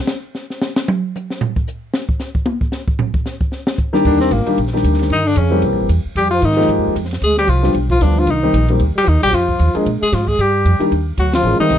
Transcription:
0.07 snare, hi-hat pedal
0.35 snare
0.50 snare
0.61 snare, hi-hat pedal
0.76 snare
0.88 mid tom
1.16 hi-hat pedal, mid tom
1.30 snare
1.41 floor tom
1.56 kick
1.68 hi-hat pedal
1.94 snare
2.09 kick
2.20 snare, hi-hat pedal
2.35 kick
2.46 high tom
2.61 kick
2.72 snare, hi-hat pedal
2.88 kick
2.99 floor tom
3.14 kick
3.26 snare, hi-hat pedal
3.41 kick
3.52 snare
3.67 snare
3.78 kick, hi-hat pedal
3.93 grand piano D#3 G3 A#3 D4 G4, snare
4.05 upright bass D#2, trombone D3, tenor saxophone D4, kick, crash
4.20 trombone C3, tenor saxophone C4, snare
4.31 upright bass G#1, trombone A#2, tenor saxophone A#3, kick, hi-hat pedal, ride
4.46 grand piano D#3 G3 A#3 D4 G4, muted upright bass stroke, ride
4.58 upright bass A#1, kick, ride
4.67 snare
4.73 grand piano D#3 G3 A#3 D4 G4, snare
4.84 upright bass D2, kick, hi-hat pedal, ride
4.93 snare
4.99 snare, ride
5.10 upright bass G2, trombone D#3, tenor saxophone D#4, kick, ride
5.24 trombone D3, tenor saxophone D4
5.36 upright bass F2, trombone C#3, tenor saxophone C#4, kick, hi-hat pedal, ride
5.50 grand piano E3 G3 A#3 C4 G4
5.62 upright bass C2, kick, ride
5.72 upright bass A#1
5.81 upright bass G1
5.89 upright bass E2, kick, hi-hat pedal, ride
6.05 muted upright bass stroke
6.15 upright bass F2, trombone G3, tenor saxophone G4, kick, ride
6.31 trombone F3, tenor saxophone F4
6.42 upright bass G#2, trombone D#3, tenor saxophone D#4, kick, hi-hat pedal, ride
6.52 snare
6.56 grand piano F3 G#3 A#3 D#4 G4, snare
6.68 upright bass G2, kick, ride
6.79 upright bass F2
6.87 upright bass D#2
6.95 upright bass F2, kick, hi-hat pedal, ride
7.05 snare
7.11 snare, ride
7.22 upright bass D2, trombone G#3, tenor saxophone G#4, kick, ride
7.37 trombone G3, tenor saxophone G4, snare
7.47 upright bass C2, trombone F3, tenor saxophone F4, kick, hi-hat pedal, ride
7.63 grand piano F3 G3 B3 D4 G4, snare
7.74 upright bass B1, kick, ride
7.90 trombone F3, tenor saxophone F4, kick
8.01 upright bass D2, trombone D3, grand piano F3 G3 B3 D4 F4, tenor saxophone D4, hi-hat pedal, ride
8.15 trombone F3, tenor saxophone F4
8.27 upright bass C2, trombone D#3, tenor saxophone D#4, kick, ride
8.43 grand piano D#3 G3 A#3 C4 G4
8.53 upright bass A#1, kick, hi-hat pedal, ride
8.68 grand piano D#3 G3 A#3 C4 G4, ride
8.79 upright bass D2, ride
8.96 trombone G3, tenor saxophone G4
9.06 upright bass D#2, trombone D#3, tenor saxophone D#4, kick, hi-hat pedal, ride
9.14 upright bass C2
9.21 upright bass A#1, trombone G3, tenor saxophone G4, ride
9.32 upright bass F2, trombone F3, tenor saxophone F4, kick, snare, ride
9.48 kick
9.59 upright bass D#2, kick, hi-hat pedal, ride
9.75 grand piano F3 G#3 A#3 D4 G#4, muted upright bass stroke, ride
9.86 upright bass A#2, kick, ride
10.00 trombone G#3, tenor saxophone G#4, muted upright bass stroke
10.12 upright bass G#2, trombone F3, tenor saxophone F4, kick, snare, hi-hat pedal, ride
10.26 trombone G#3, tenor saxophone G#4, kick
10.38 upright bass G2, trombone G3, tenor saxophone G4, kick, ride
10.65 upright bass F2, kick, hi-hat pedal, ride
10.79 grand piano D#3 G3 A#3 D4 G4, muted upright bass stroke, ride
10.91 upright bass D#2, kick, ride
11.17 upright bass D2, trombone F#3, tenor saxophone F#4, kick, hi-hat pedal, ride
11.33 trombone F3, tenor saxophone F4, snare, ride
11.43 upright bass A1, grand piano E3 G#3 A#3 C#4 G#4
11.59 trombone D#3, grand piano D#3 G3 A3 C4 G4, tenor saxophone D#4, muted upright bass stroke
11.70 upright bass C2, kick, snare, hi-hat pedal, ride

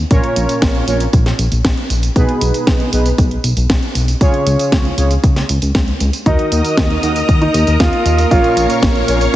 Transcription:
0.11 analog synth bass A#1, analog polysynth A#2 C#4 F4 A#4 C#5, kick, closed hi-hat, tambourine
0.23 closed hi-hat
0.36 analog synth bass A#1, closed hi-hat, tambourine
0.49 closed hi-hat, tambourine
0.62 analog synth bass A#1, kick, snare, closed hi-hat, tambourine
0.75 closed hi-hat
0.88 analog synth bass A#1, analog polysynth A#2 C#4 F4 A#4 C#5, closed hi-hat, tambourine
1.00 closed hi-hat, tambourine
1.13 analog synth bass A#1, kick, closed hi-hat, tambourine
1.26 snare, closed hi-hat
1.39 analog synth bass A#1, closed hi-hat, tambourine
1.52 analog synth bass A#1, closed hi-hat, tambourine
1.65 analog synth bass A#1, kick, snare, closed hi-hat, tambourine
1.77 closed hi-hat
1.90 analog synth bass A#1, closed hi-hat, tambourine
2.03 closed hi-hat, tambourine
2.16 analog synth bass B1, analog polysynth B2 B3 D#4 G#4 B4, kick, closed hi-hat, tambourine
2.29 closed hi-hat
2.41 analog synth bass B1, closed hi-hat, tambourine
2.54 closed hi-hat, tambourine
2.67 analog synth bass B1, kick, snare, closed hi-hat, tambourine
2.80 closed hi-hat
2.93 analog synth bass B1, analog polysynth B2 B3 D#4 G#4 B4, closed hi-hat, tambourine
3.06 closed hi-hat, tambourine
3.18 analog synth bass B1, kick, closed hi-hat, tambourine
3.31 closed hi-hat
3.44 analog synth bass B1, closed hi-hat, tambourine
3.57 analog synth bass B1, closed hi-hat, tambourine
3.70 analog synth bass B1, kick, snare, closed hi-hat, tambourine
3.82 closed hi-hat
3.95 analog synth bass B1, closed hi-hat, tambourine
4.08 closed hi-hat, tambourine
4.21 analog synth bass C#2, analog polysynth C#3 C#4 F4 G#4 C#5, kick, closed hi-hat, tambourine
4.34 closed hi-hat
4.47 analog synth bass C#2, closed hi-hat, tambourine
4.59 closed hi-hat, tambourine
4.72 analog synth bass C#2, kick, snare, closed hi-hat, tambourine
4.85 closed hi-hat
4.98 analog synth bass C#2, analog polysynth C#3 C#4 F4 G#4 C#5, closed hi-hat, tambourine
5.11 closed hi-hat, tambourine
5.24 analog synth bass C#2, kick, closed hi-hat, tambourine
5.36 snare, closed hi-hat
5.49 analog synth bass C#2, closed hi-hat, tambourine
5.62 analog synth bass C#2, closed hi-hat, tambourine
5.75 analog synth bass C#2, kick, snare, closed hi-hat, tambourine
5.88 closed hi-hat
6.00 analog synth bass C#2, closed hi-hat, tambourine
6.13 closed hi-hat, tambourine
6.26 analog synth bass D#2, analog polysynth D#3 D#4 F#4 A#4 D#5, grand piano D#4, string machine A#4 D#5 A#5 D#6, kick, closed hi-hat, tambourine
6.39 closed hi-hat
6.52 analog synth bass D#2, closed hi-hat, tambourine
6.65 closed hi-hat, tambourine
6.77 analog synth bass D#2, kick, snare, closed hi-hat, tambourine
6.90 closed hi-hat
7.03 analog synth bass D#2, analog polysynth D#3 D#4 F#4 A#4 D#5, closed hi-hat, tambourine
7.16 closed hi-hat, tambourine
7.29 analog synth bass D#2, kick, closed hi-hat, tambourine
7.41 grand piano D#4, closed hi-hat
7.54 analog synth bass D#2, closed hi-hat, tambourine
7.67 analog synth bass D#2, closed hi-hat, tambourine
7.80 analog synth bass D#2, grand piano F4, kick, snare, closed hi-hat, tambourine
7.93 closed hi-hat
8.06 analog synth bass D#2, closed hi-hat, tambourine
8.19 closed hi-hat, tambourine
8.31 analog synth bass A#1, analog polysynth A#2 C#4 F4 A#4 C#5, grand piano F4, string machine C#5 F5 C#6, kick, closed hi-hat, tambourine
8.44 closed hi-hat
8.57 analog synth bass A#1, closed hi-hat, tambourine
8.70 closed hi-hat, tambourine
8.82 analog synth bass A#1, kick, snare, closed hi-hat, tambourine
8.95 closed hi-hat
9.08 analog synth bass A#1, analog polysynth A#2 C#4 F4 A#4 C#5, closed hi-hat, tambourine
9.21 closed hi-hat, tambourine

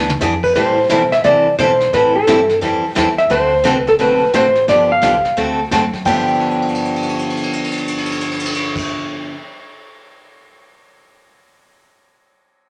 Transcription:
Already playing: upright bass D2, electric slide guitar E5
0.09 mid tom
0.21 upright bass F2, steel-string acoustic guitar E3 B3 D4 G#4, snare, hi-hat pedal
0.43 electric slide guitar B4, kick, crash
0.55 upright bass A2, steel-string acoustic guitar E3 G3 C4 E4 A4, electric slide guitar C5, brush sweep, snare
0.89 upright bass B2, steel-string acoustic guitar E3 G3 C4 E4 A4, kick, snare, hi-hat pedal
1.12 electric slide guitar E5, snare
1.24 upright bass C3, steel-string acoustic guitar E3 G3 C4 E4 A4, electric slide guitar D5, brush sweep, kick, snare
1.58 upright bass B2, steel-string acoustic guitar E3 G3 C4 E4 A4, electric slide guitar C5, snare, hi-hat pedal
1.80 snare
1.93 upright bass A2, steel-string acoustic guitar E3 G3 C4 E4 A4, electric slide guitar B4, brush sweep, kick, snare
2.16 electric slide guitar A4
2.27 upright bass G2, steel-string acoustic guitar E3 G3 C4 E4 A4, kick, snare, hi-hat pedal
2.49 snare
2.61 upright bass F2, steel-string acoustic guitar E3 G3 C4 E4 A4, brush sweep, kick, snare
2.95 upright bass E2, steel-string acoustic guitar E3 G3 C4 E4 A4, kick, snare, hi-hat pedal
3.18 electric slide guitar E5, snare
3.30 upright bass D2, steel-string acoustic guitar D3 A3 C4 F#4 A4, electric slide guitar C5, brush sweep, kick, snare
3.64 upright bass C2, steel-string acoustic guitar D3 A3 C4 F#4 A4, kick, snare, hi-hat pedal
3.74 electric slide guitar B4
3.87 electric slide guitar A4, snare
3.99 upright bass B1, steel-string acoustic guitar D3 A3 C4 F#4 A4, electric slide guitar B4, brush sweep, kick, snare
4.34 upright bass A1, steel-string acoustic guitar D3 A3 C4 F#4 A4, electric slide guitar C5, kick, snare, hi-hat pedal
4.55 snare
4.68 upright bass G1, steel-string acoustic guitar D3 F3 B3 D4 G4, electric slide guitar D5, brush sweep, kick, snare
4.92 electric slide guitar F5
5.02 upright bass B1, steel-string acoustic guitar D3 F3 B3 D4 G4, kick, snare, hi-hat pedal
5.24 muted upright bass stroke, snare
5.37 upright bass D2, steel-string acoustic guitar D3 A3 C4 F#4 A4, brush sweep, kick, snare
5.71 upright bass F#2, steel-string acoustic guitar D3 A3 C4 F#4 A4, kick, snare, hi-hat pedal
5.94 kick, snare
6.05 upright bass G1, steel-string acoustic guitar G2 D3 F3 B3 D4 G4, electric slide guitar G5, kick, crash
6.28 crash
6.34 ride
6.40 crash
6.51 ride
6.62 crash
6.69 ride
6.75 crash
6.85 ride
6.96 crash
7.03 ride
7.09 crash
7.19 ride
7.30 crash
7.37 ride
7.43 crash
7.53 ride
7.64 crash
7.72 ride
7.77 crash
7.88 ride
7.98 crash
8.06 ride
8.12 crash
8.21 ride
8.31 crash
8.40 ride
8.45 crash
8.54 ride
8.76 kick, crash

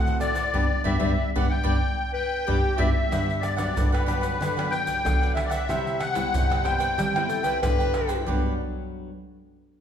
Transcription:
Already playing: nylon-string guitar A2 A3 C4 F#4, accordion F#5
0.06 cavaquinho A4 C5 F#5, pandeiro, shaker
0.20 cavaquinho D4 A4 C5 F#5, accordion D5, pandeiro, tamborim, shaker
0.35 cavaquinho A4 C5 F#5, pandeiro, shaker
0.54 nylon-string guitar G2 G3 B3 D4, cavaquinho G4 B4 D5, surdo
0.84 nylon-string guitar G2 G3 B3 D4, cavaquinho G4 B4 D5, accordion E5, surdo
0.99 nylon-string guitar G2 G3 B3 D4, cavaquinho G4 B4 D5, surdo
1.36 nylon-string guitar G2 G3 B3 D4, cavaquinho G4 B4 D5, accordion F#5, surdo
1.50 accordion G5
1.64 nylon-string guitar G2 G3 B3 D4, cavaquinho G4 B4 D5, surdo
2.13 clarinet B4, accordion G5
2.47 nylon-string guitar G2 G3 B3 D4, cavaquinho G4 B4 D5, clarinet G4, surdo
2.77 nylon-string guitar G2 G3 B3 D4, cavaquinho G4 B4 D5, accordion E5, surdo
3.11 nylon-string guitar G2 B3 D4, cavaquinho D4 G4 B4 F#5, pandeiro, tamborim, shaker, surdo
3.30 pandeiro, shaker
3.41 accordion D5, muted cavaquinho stroke, pandeiro, tamborim, shaker
3.56 nylon-string guitar F#3 B3 D4, cavaquinho G4 B4 F#5, accordion D5, pandeiro, tamborim, shaker, surdo
3.76 nylon-string guitar G2 D3, cavaquinho D4 G4 B4 F#5, pandeiro, shaker, surdo
3.92 cavaquinho G4 B4 F#5, accordion B4, pandeiro, tamborim, shaker
4.06 nylon-string guitar F#3 B3 D4, cavaquinho D4 G4 B4 F#5, accordion B4, pandeiro, tamborim, shaker
4.21 cavaquinho G4 B4 F#5, pandeiro, shaker, surdo
4.40 nylon-string guitar G2 D3, cavaquinho D4 G4 B4 F#5, pandeiro, tamborim, shaker, surdo
4.57 nylon-string guitar F#3 B3 D4, cavaquinho G4 B4 F#5, pandeiro, tamborim, shaker
4.71 accordion G5, muted cavaquinho stroke, pandeiro
4.86 cavaquinho G4 B4, pandeiro, shaker, surdo
5.05 nylon-string guitar D3 F#3 B3 D4, pandeiro, tamborim, shaker, surdo
5.21 cavaquinho G4 B4 F#5, pandeiro, shaker
5.35 cavaquinho D4 G4 B4 F#5, accordion E5, pandeiro, tamborim
5.44 accordion D5
5.50 cavaquinho G4 B4 F#5, accordion E5, pandeiro, shaker, surdo
5.68 nylon-string guitar C3 G3 E4, cavaquinho E4 B4 C5 G5, pandeiro, tamborim, shaker, surdo
5.87 pandeiro, shaker
5.99 accordion F#5, muted cavaquinho stroke, pandeiro, tamborim
6.14 nylon-string guitar G3 B3 E4, cavaquinho B4 C5 G5, pandeiro, tamborim, shaker, surdo
6.33 nylon-string guitar G2 C3, cavaquinho E4 B4 C5 G5, pandeiro, shaker, surdo
6.50 cavaquinho B4 C5 G5, pandeiro, tamborim, shaker
6.64 nylon-string guitar G3 B3 E4, cavaquinho E4 B4 C5 G5, accordion G5, pandeiro, tamborim, surdo
6.78 cavaquinho B4 C5 G5, pandeiro, shaker, surdo
6.98 nylon-string guitar C3 G3, cavaquinho E4 B4 C5 G5, pandeiro, tamborim, shaker, surdo
7.15 nylon-string guitar G3 B3 E4, cavaquinho B4 C5 G5, pandeiro, tamborim, shaker
7.29 clarinet A4, muted cavaquinho stroke, pandeiro, shaker
7.43 clarinet B4, cavaquinho B4 C5 G5, pandeiro, shaker, surdo
7.62 nylon-string guitar G2 D3 G3 B3 E4, clarinet B4, pandeiro, tamborim, shaker, surdo
7.79 cavaquinho B4 C5 G5, pandeiro, shaker
7.93 cavaquinho E4 B4 C5 G5, pandeiro, tamborim
8.07 cavaquinho B4 C5 G5, pandeiro, shaker, surdo
8.26 nylon-string guitar G2 F#3 B3 D4, cavaquinho D4 G4 B4 F#5, clarinet B4, surdo

